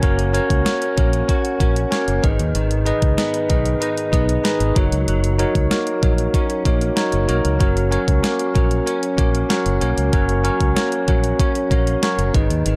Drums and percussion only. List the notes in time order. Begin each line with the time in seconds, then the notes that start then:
0.03 kick, closed hi-hat
0.19 closed hi-hat
0.35 closed hi-hat
0.50 kick, closed hi-hat
0.66 snare, closed hi-hat
0.82 closed hi-hat
0.98 kick, closed hi-hat
1.13 closed hi-hat
1.29 kick, closed hi-hat
1.45 closed hi-hat
1.60 kick, closed hi-hat
1.76 closed hi-hat
1.92 snare, closed hi-hat
2.08 closed hi-hat
2.24 kick, closed hi-hat
2.39 closed hi-hat
2.55 closed hi-hat
2.71 closed hi-hat
2.86 closed hi-hat
3.02 kick, closed hi-hat
3.18 snare, closed hi-hat
3.34 closed hi-hat
3.50 kick, closed hi-hat
3.66 closed hi-hat
3.82 closed hi-hat
3.98 closed hi-hat
4.13 kick, closed hi-hat
4.29 closed hi-hat
4.45 snare, closed hi-hat
4.60 closed hi-hat
4.76 kick, closed hi-hat
4.92 closed hi-hat
5.08 closed hi-hat
5.24 closed hi-hat
5.39 closed hi-hat
5.55 kick, closed hi-hat
5.71 snare, closed hi-hat
5.87 closed hi-hat
6.03 kick, closed hi-hat
6.18 closed hi-hat
6.34 kick, closed hi-hat
6.50 closed hi-hat
6.65 kick, closed hi-hat
6.81 closed hi-hat
6.97 snare, closed hi-hat
7.12 closed hi-hat
7.29 closed hi-hat
7.45 closed hi-hat
7.61 kick, closed hi-hat
7.77 closed hi-hat
7.92 closed hi-hat
8.08 kick, closed hi-hat
8.24 snare, closed hi-hat
8.39 closed hi-hat
8.55 kick, closed hi-hat
8.71 closed hi-hat
8.87 closed hi-hat
9.03 closed hi-hat
9.18 kick, closed hi-hat
9.35 closed hi-hat
9.50 snare, closed hi-hat
9.66 closed hi-hat
9.81 closed hi-hat
9.98 closed hi-hat
10.13 kick, closed hi-hat
10.29 closed hi-hat
10.45 closed hi-hat
10.61 kick, closed hi-hat
10.77 snare, closed hi-hat
10.92 closed hi-hat
11.08 kick, closed hi-hat
11.24 closed hi-hat
11.40 kick, closed hi-hat
11.55 closed hi-hat
11.71 kick, closed hi-hat
11.87 closed hi-hat
12.03 snare, closed hi-hat
12.19 closed hi-hat
12.35 kick, closed hi-hat
12.50 closed hi-hat
12.66 closed hi-hat